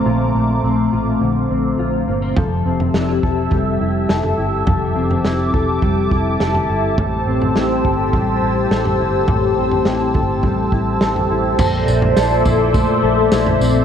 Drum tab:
CC |----------------|----------------|----------------|----------------|
TB |----------------|----------------|----------------|----------------|
SD |----------------|----o-------o---|----o-------o---|----o-------o---|
FT |----------------|o--o----o----o--|o--o----o----o--|o--o----o----o--|
BD |----------------|o-----o-o-------|o-----o-o-o-----|o-----o-o-------|

CC |----------------|x---------------|
TB |----------------|x-x-x-x-x---x-x-|
SD |----o-------o---|----o-------o---|
FT |o--o--o-o----o--|o--o--o-o----o--|
BD |o-----o-o-o-----|o-----o-o-------|